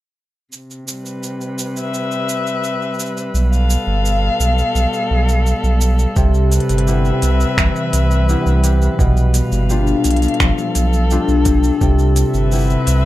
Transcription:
0.52 string quartet C3, cabasa
0.71 cabasa
0.86 string quartet G3, cabasa
1.04 string quartet B4, cabasa
1.23 cabasa
1.41 cabasa
1.59 cabasa
1.77 string quartet E5, cabasa
1.94 cabasa
2.11 cabasa
2.29 cabasa
2.47 cabasa
2.64 cabasa
2.82 cabasa
2.94 cabasa
3.00 cabasa
3.06 cabasa
3.17 cabasa
3.34 sub bass B1, string quartet B2, cabasa
3.52 string quartet A4 F5, cabasa
3.70 cabasa
3.87 sub bass G1
4.05 cabasa
4.40 sub bass B1, cabasa
4.58 cabasa
4.75 sub bass B1, cabasa
4.93 cabasa
5.11 sub bass B1
5.29 cabasa
5.46 cabasa
5.64 sub bass B1, cabasa
5.81 cabasa
5.99 cabasa
6.16 sub bass C2, harp C3, string quartet C3, kick, cabasa
6.34 cabasa
6.48 string quartet B4, closed hi-hat
6.52 cabasa
6.60 closed hi-hat
6.69 sub bass G1, string quartet E5, closed hi-hat, cabasa
6.78 closed hi-hat
6.87 harp G3 B3 E4, cabasa
7.05 cabasa
7.22 sub bass C2, closed hi-hat, cabasa
7.40 cabasa
7.58 sub bass C2, harp E3, finger snap, kick, cabasa
7.76 cabasa
7.93 sub bass C2, closed hi-hat, cabasa
8.11 cabasa
8.29 harp G3 B3 E4, cabasa
8.46 sub bass C2, cabasa
8.64 harp G3, closed hi-hat, cabasa
8.82 cabasa
8.99 sub bass B1, harp B2, string quartet B2, kick, cabasa
9.17 cabasa
9.34 closed hi-hat, cabasa
9.43 string quartet F5
9.52 sub bass G1, cabasa
9.70 harp G3 D4 F4, cabasa
9.85 string quartet A4, cabasa
10.04 sub bass B1, closed hi-hat, cabasa
10.11 closed hi-hat
10.16 closed hi-hat
10.22 closed hi-hat, cabasa
10.28 closed hi-hat
10.34 closed hi-hat
10.40 sub bass B1, harp F3, finger snap, kick, cabasa
10.58 cabasa
10.75 sub bass B1, closed hi-hat, cabasa
10.93 cabasa
11.11 harp G3 D4 F4, cabasa
11.28 sub bass B1, cabasa
11.45 harp G3, kick, closed hi-hat, cabasa
11.64 cabasa
11.81 sub bass C2, string quartet C3, harp C3, kick, cabasa
11.99 cabasa
12.16 closed hi-hat, cabasa
12.30 sub bass G1, string quartet E5, cabasa
12.39 string quartet B4
12.52 harp G3 B3 E4, cabasa
12.55 cabasa
12.61 cabasa
12.63 cabasa
12.66 cabasa
12.70 cabasa
12.87 sub bass C2, closed hi-hat, cabasa

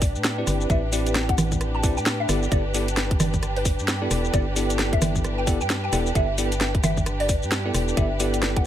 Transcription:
Already playing: fm bass A1, string section D4 G4 B4, synth pluck D5
0.02 kick, open hi-hat, shaker
0.15 fm bass A2, shaker
0.24 snare, closed hi-hat, shaker
0.38 tine electric piano C4 E4 G4 B4 D5
0.47 fm bass G1, cross-stick, open hi-hat, shaker
0.61 shaker
0.70 fm bass A1, tine electric piano C4 E4 G4 B4 D5, synth pluck E5, kick, closed hi-hat, shaker
0.93 tine electric piano C4 E4 G4 B4 D5, open hi-hat, shaker
1.07 closed hi-hat, shaker
1.15 snare, closed hi-hat, shaker
1.29 synth pluck F#5, kick, closed hi-hat
1.38 fm bass A1, cross-stick, open hi-hat, high conga, shaker
1.52 kick, closed hi-hat, shaker
1.61 cross-stick, closed hi-hat, shaker
1.75 synth pluck A5
1.83 tine electric piano C4 E4 G4 B4 D5, kick, open hi-hat, shaker
1.97 fm bass A2, synth pluck G5, shaker
2.06 snare, closed hi-hat, shaker
2.20 synth pluck E5
2.29 fm bass G1, tine electric piano B3 E4 G4 A4 D5, cross-stick, open hi-hat, shaker
2.43 shaker
2.52 fm bass G1, tine electric piano B3 E4 G4 A4 D5, synth pluck D5, kick, closed hi-hat, shaker
2.74 tine electric piano B3 E4 G4 A4 D5, open hi-hat, shaker
2.88 closed hi-hat, shaker
2.97 snare, closed hi-hat, shaker
3.11 kick, closed hi-hat
3.20 fm bass G1, synth pluck D5, cross-stick, open hi-hat, high conga, shaker
3.34 kick, closed hi-hat, shaker
3.43 cross-stick, closed hi-hat, shaker
3.56 synth pluck B4, open hi-hat
3.65 kick, open hi-hat, shaker
3.79 fm bass G2, shaker
3.88 snare, closed hi-hat, shaker
4.02 tine electric piano B3 E4 G4 A4 D5
4.11 fm bass E1, cross-stick, open hi-hat, shaker
4.25 shaker
4.33 fm bass G1, tine electric piano B3 E4 G4 A4 D5, synth pluck D5, kick, closed hi-hat, shaker
4.56 tine electric piano B3 E4 G4 A4 D5, open hi-hat, shaker
4.70 closed hi-hat, shaker
4.79 snare, closed hi-hat, shaker
4.93 synth pluck E5, kick, closed hi-hat
5.02 fm bass G1, cross-stick, open hi-hat, high conga, shaker
5.16 kick, closed hi-hat, shaker
5.24 cross-stick, closed hi-hat, shaker
5.38 synth pluck G5
5.47 tine electric piano B3 E4 G4 A4 D5, kick, open hi-hat, shaker
5.61 fm bass G2, synth pluck G5, shaker
5.70 snare, closed hi-hat, shaker
5.84 synth pluck G5
5.93 fm bass E1, tine electric piano B3 E4 G4 A4 D5, cross-stick, open hi-hat, shaker
6.06 shaker
6.15 fm bass G1, tine electric piano B3 E4 G4 A4 D5, synth pluck E5, kick, closed hi-hat, shaker
6.38 tine electric piano B3 E4 G4 A4 D5, open hi-hat, shaker
6.52 closed hi-hat, shaker
6.61 snare, closed hi-hat, shaker
6.75 kick, closed hi-hat
6.83 fm bass G1, synth pluck E5, cross-stick, open hi-hat, high conga, shaker
6.97 kick, closed hi-hat, shaker
7.06 cross-stick, closed hi-hat, shaker
7.20 synth pluck D5, open hi-hat
7.29 kick, open hi-hat, shaker
7.43 fm bass G2, shaker
7.52 snare, closed hi-hat, shaker
7.66 tine electric piano B3 E4 G4 A4 D5
7.74 fm bass E1, cross-stick, open hi-hat, shaker
7.88 shaker
7.97 fm bass G1, tine electric piano B3 E4 G4 A4 D5, synth pluck E5, kick, closed hi-hat, shaker
8.20 tine electric piano B3 E4 G4 A4 D5, open hi-hat, shaker
8.34 closed hi-hat, shaker
8.43 snare, closed hi-hat, shaker
8.56 synth pluck F#5, kick, closed hi-hat

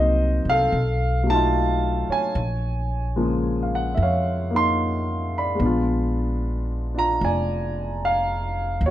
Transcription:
Already playing: upright bass C2, grand piano F#3 A#3 C4 D#4 C5 D#5
0.45 upright bass C2
0.49 grand piano A4 F5
0.72 upright bass B1
1.23 grand piano F#3 A3
1.30 grand piano D#4 A5
1.34 grand piano F4
2.09 grand piano C#5 G#5, muted upright bass stroke
2.35 upright bass A#1
3.16 grand piano C#3 F3 G#3 A#3
3.63 grand piano F5
3.75 grand piano F#5
3.95 upright bass F2, grand piano E5
4.03 grand piano C#5 F5
4.51 grand piano A#3 D#4
4.56 grand piano C6
5.38 grand piano D5 B5
5.55 grand piano G#3 B3
5.60 upright bass A#1, grand piano D4
5.66 grand piano F4
6.94 grand piano D4 F4
6.99 grand piano A#5
7.21 upright bass F1, grand piano D5 G#5
8.05 grand piano F5
8.81 upright bass D#2
8.86 grand piano F#4 C#5

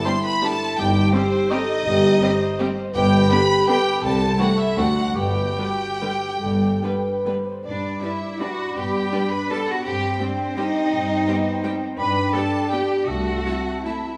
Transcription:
Already playing: french horn section E4
0.05 viola section G3 B3, violin section D4 G4 C6, cor anglais C5, flute section C6
0.24 cor anglais B4, violin section B5, flute section B5
0.42 viola section G3 B3, violin section D4 G4 A5, cor anglais A4, flute section A5
0.79 tuba G1, double bass section G1, cello section G2, french horn section D#4, cor anglais G4, violin section G5, flute section G5
1.13 viola section G3 C4, cor anglais C4, violin section C4 G4 C5, french horn section G4, flute section C5
1.51 viola section G3 C4, violin section C4 G4 D#5, cor anglais D#4, french horn section A4, flute section D#5
1.86 double bass section G1, tuba G1, cello section G2, french horn section G4
2.21 viola section G3 C4, violin section C4 G4, french horn section C5
2.59 viola section G3 C4, violin section C4 G4
2.93 double bass section G1, tuba G1, cello section G2, cor anglais G4, french horn section B4, violin section G5, flute section G5
3.29 viola section D3 B3, violin section D4 G4 B5, french horn section G4, cor anglais B4, flute section B5
3.67 viola section D3 B3, violin section D4 G4 G5, cor anglais G4, french horn section B4, flute section G5
4.02 double bass section C2, cello section C2, tuba C2, cor anglais A4, french horn section C5, flute section A5, violin section A5
4.38 viola section E3 A3, violin section C4 E4 F#5, cor anglais F#4, french horn section A4, flute section F#5
4.57 cor anglais E4, flute section E5, violin section E5
4.77 double bass section D2, tuba D2, cello section D2, viola section D3 A3, violin section C4 A4 F#5, cor anglais F#4, french horn section F#4, flute section F#5
5.15 double bass section G1, tuba G1, cello section G2, cor anglais G4, french horn section B4, violin section G5, flute section G5
5.58 viola section D3 G3, violin section B3 B4, french horn section F#4
6.00 viola section D3 G3, violin section B3 B4, french horn section G4
6.41 tuba G1, double bass section G1, cello section G2, french horn section A4
6.82 viola section D3 G3, violin section B3 B4, french horn section B4
7.26 viola section D3 G3, violin section B3 B4
7.45 french horn section C5
7.65 double bass section G2, cello section D4, violin section D5, cor anglais D5, flute section B5
8.00 viola section G3 D4, french horn section E4, cello section E4, violin section B4 D5 E5
8.40 viola section G3 D4, french horn section D4, cello section F#4, violin section B4 D5 F#5
8.75 double bass section G2, french horn section B3, cello section G4, violin section G5
9.12 viola section G3 D4, french horn section D4, violin section B4 D5
9.31 cello section B4, violin section B5
9.50 viola section G3 D4, french horn section B3, cello section A4, violin section B4 D5 A5
9.67 cello section F#4, violin section F#5
9.84 double bass section G2, french horn section C4, cello section G4, cor anglais C5, flute section G5, violin section G5
10.19 viola section G3 G4, cello section C4, french horn section D4, violin section C5 G5
10.56 viola section G3 G4, french horn section C4, cello section D#4, violin section C5 D#5 G5
10.92 double bass section G2
11.27 viola section G3 G4, french horn section B3, violin section C5 G5
11.63 viola section G3 G4, french horn section C4, violin section C5 G5
11.98 double bass section G2, french horn section D4, cello section B4, cor anglais D5, flute section G5, violin section B5
12.33 viola section B3 G4, cello section A4, violin section D5 G5 A5
12.70 viola section B3 G4, cello section G4, violin section D5 G5
13.07 double bass section C2, french horn section A3, cello section F#4, cor anglais E5, violin section F#5, flute section A5
13.45 viola section A3 E4, french horn section C4, violin section E5 A5
13.85 viola section A3 E4, cello section E4, violin section E5 A5

